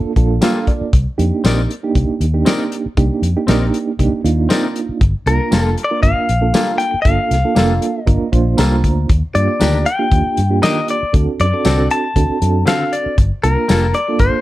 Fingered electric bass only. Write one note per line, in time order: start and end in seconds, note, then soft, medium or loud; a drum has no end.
0.05 muted fingered electric bass stroke soft
0.16 0.38 A#1 medium
0.81 muted fingered electric bass stroke soft
0.93 1.05 C2 medium
1.19 1.30 F2 medium
1.44 1.66 A#1 medium
1.95 2.07 C2 medium
2.09 muted fingered electric bass stroke soft
2.20 2.42 D#2 medium
2.86 muted fingered electric bass stroke soft
2.97 3.09 C2 medium
3.22 3.34 F2 medium
3.48 3.69 A#1 medium
3.99 4.11 C2 medium
4.24 4.46 D#2 medium
4.89 muted fingered electric bass stroke soft
5.01 5.13 G1 medium
5.26 5.38 C2 loud
5.52 5.74 F1 medium
6.03 6.15 G1 medium
6.18 muted fingered electric bass stroke soft
6.29 6.50 A#1 medium
6.94 muted fingered electric bass stroke soft
7.06 7.17 G1 medium
7.31 7.42 C2 medium
7.56 7.78 F1 medium
8.07 8.19 G1 medium
8.22 muted fingered electric bass stroke soft
8.33 8.56 A#1 medium
8.59 8.82 C2 medium
8.84 9.07 D2 medium
9.10 9.21 D#2 medium
9.35 9.47 G2 medium
9.61 9.82 D2 medium
10.12 10.23 D#2 medium
10.26 muted fingered electric bass stroke soft
10.38 10.59 G2 medium
11.03 muted fingered electric bass stroke soft
11.14 11.25 D2 medium
11.40 11.51 F#2 medium
11.65 11.87 C2 medium
12.16 12.27 D2 medium
12.30 muted fingered electric bass stroke soft
12.42 12.63 F#2 medium
13.06 muted fingered electric bass stroke soft
13.18 13.30 G1 medium
13.44 13.55 C2 medium
13.70 13.91 F1 medium
14.20 14.31 G1 medium
14.33 muted fingered electric bass stroke soft